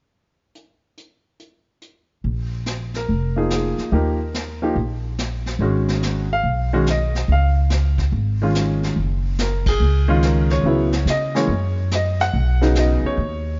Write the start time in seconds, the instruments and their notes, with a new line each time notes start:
0.55 closed hi-hat
0.97 closed hi-hat
1.40 closed hi-hat
1.82 closed hi-hat
2.24 upright bass A#1, brush sweep
2.66 snare, hi-hat pedal
2.94 upright piano A#4, snare
3.08 upright bass F1, brush sweep
3.36 upright piano F3 A#3 D#4 G#4
3.50 upright piano G#4, snare, hi-hat pedal
3.78 muted upright bass stroke, snare
3.92 upright bass D#2, upright piano F3 A#3 D#4 G4 A#4, brush sweep
4.34 snare, hi-hat pedal
4.62 upright piano F3 A#3 D#4 G4
4.76 upright bass A#1, brush sweep
5.18 snare, hi-hat pedal
5.46 snare
5.59 upright bass G#1, upright piano D#3 G#3 C#4 F#4, brush sweep
5.88 snare
6.02 snare, hi-hat pedal
6.33 upright piano F5
6.43 upright bass B1, brush sweep
6.73 upright piano D#3 G#3 C#4 F#4
6.86 upright piano D#5, snare, hi-hat pedal
7.15 snare
7.28 upright bass C#2, upright piano F5, brush sweep
7.70 snare, hi-hat pedal
7.98 kick, snare
8.12 upright bass G#1, brush sweep
8.42 upright piano D#3 G#3 C#4 F4
8.55 snare, hi-hat pedal
8.83 snare
8.96 upright bass F#1, brush sweep
9.39 upright piano A#4, snare, hi-hat pedal
9.66 upright piano G#4, kick, ride
9.80 upright bass C#2, brush sweep
10.08 upright piano D#3 G#3 C#4 F4
10.22 upright piano A#4, snare, hi-hat pedal
10.50 upright piano C#5, snare
10.64 upright bass C#2, upright piano C#3 F#3 B3 E4, brush sweep
10.93 snare
11.05 upright bass C#3, snare, hi-hat pedal
11.10 upright piano D#5
11.35 upright piano E3 G#3 A#3 C#4 C#5, snare
11.48 upright bass F#2, brush sweep
11.91 upright piano D#5, snare, hi-hat pedal
12.20 upright piano F#5, snare
12.33 upright bass B1, brush sweep
12.61 upright piano C#3 F#3 B3 D#4, snare
12.75 snare, hi-hat pedal
12.79 upright piano D#5
13.03 upright piano C#5, muted upright bass stroke
13.17 upright bass D#2, brush sweep